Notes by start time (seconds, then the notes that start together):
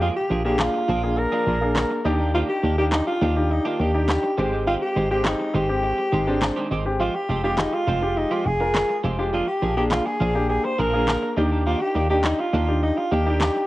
Already playing: F2, downlifter
0.01 F3 A#3 D4 F4 G#4
0.16 G4, muted clean electric guitar stroke
0.30 A#1 F3 A#3 D4 G#4
0.45 F3 A#3 D4 G4 G#4
0.59 F4, snare, clap
0.74 muted clean electric guitar stroke
0.88 A#1 F3 A#3 D4 G#4
1.03 A#3 D4 G#4
1.18 A#4, muted clean electric guitar stroke
1.32 F3 A#3 D4 G#4
1.46 A#1 F3 A#3 D4 G#4
1.61 A#3 D4 G#4
1.75 muted clean electric guitar stroke, snare, clap
1.90 muted clean electric guitar stroke
2.05 D#2 D#3 A#3 D4 D#4 G4
2.19 D#3 A#3 D4 G4
2.34 D#3 A#3 D4 F4 G4
2.49 G4, muted clean electric guitar stroke
2.63 D#2 D#3 A#3 D4 G4
2.78 D#3 A#3 D4 D#4 G4
2.92 D#4, snare, clap
3.07 F4, muted clean electric guitar stroke
3.21 D#2 D#3 A#3 D4 G4
3.36 D4 D#4 G4, muted clean electric guitar stroke
3.51 D#4, muted clean electric guitar stroke
3.65 D#3 A#3 D4 F4 G4
3.80 D#2 D#3 A#3 D4 G4
3.94 D4 D#4 G4, muted clean electric guitar stroke
4.08 muted clean electric guitar stroke, snare, clap
4.23 muted clean electric guitar stroke
4.38 G#1 D#3 G#3 C4 G4
4.52 D#3 G#3 C4 G4
4.67 D#3 G#3 C4 F4 G4
4.82 G4, muted clean electric guitar stroke
4.96 G#1 D#3 G#3 C4 G4
5.11 D#3 G#3 C4 G4
5.24 D#4, muted clean electric guitar stroke, snare, clap
5.40 muted clean electric guitar stroke
5.54 G#1 D#3 G#3 C4 G4
5.69 G#3 C4 G4, muted clean electric guitar stroke
5.83 muted clean electric guitar stroke
5.98 muted clean electric guitar stroke
6.12 G#1 D#3 G#3 C4 G4
6.27 D#3 G#3 C4 D4 G4
6.41 snare, clap
6.56 D#3 G#3 C4 G4
6.71 G#1 D#3 G#3 C4 G4
6.85 G#3 C4 G4, muted clean electric guitar stroke
7.00 F3 G#3 C4 F4 G4
7.15 G4, muted clean electric guitar stroke
7.29 F1 F3 G#3 C4 G4
7.44 F3 G#3 C4 F4 G4
7.58 D#4, snare, clap
7.73 F4, muted clean electric guitar stroke
7.87 F1 F3 G#3 C4 G4
8.02 G#3 F4 G4, muted clean electric guitar stroke
8.17 D#4, muted clean electric guitar stroke
8.31 F3 G#3 C4 F4 G4
8.46 F1 G#4, muted clean electric guitar stroke
8.60 G#3 F4 A#4, muted clean electric guitar stroke
8.75 muted clean electric guitar stroke, snare, clap
8.89 muted clean electric guitar stroke
9.04 F1 F3 G#3 C4 G4
9.18 F3 G#3 C4 F4 G4
9.33 F3 A#3 D4 F4 G#4
9.48 G4, muted clean electric guitar stroke
9.62 A#1 F3 A#3 D4 G#4
9.77 F3 A#3 D4 G4 G#4
9.91 F4, muted clean electric guitar stroke, snare, clap
10.06 G#4, muted clean electric guitar stroke
10.20 A#1 F3 A#3 D4 G#4
10.35 A#3 D4 G4, muted clean electric guitar stroke
10.49 G#4, muted clean electric guitar stroke
10.64 C5, muted clean electric guitar stroke
10.79 A#1 F3 A#3 D4 G#4 A#4
10.93 F3 A#3 D4 G#4
11.08 muted clean electric guitar stroke, snare, clap
11.22 muted clean electric guitar stroke
11.37 D#2 D#3 A#3 D4 D#4 G4
11.51 D#3 A#3 D4 G4
11.66 D#3 A#3 D4 F4 G4
11.81 G4, muted clean electric guitar stroke
11.95 D#2 D#3 A#3 D4 G4
12.10 D#3 A#3 D4 D#4 G4
12.23 D#4, snare, clap
12.39 F4, muted clean electric guitar stroke
12.53 D#2 D#3 A#3 D4 G4
12.68 D4 D#4 G4, muted clean electric guitar stroke
12.83 D#4, muted clean electric guitar stroke
12.97 F4, muted clean electric guitar stroke
13.11 D#2 D#3 A#3 D4 G4
13.26 D#3 A#3 D4 D#4 G4
13.40 snare, clap
13.55 muted clean electric guitar stroke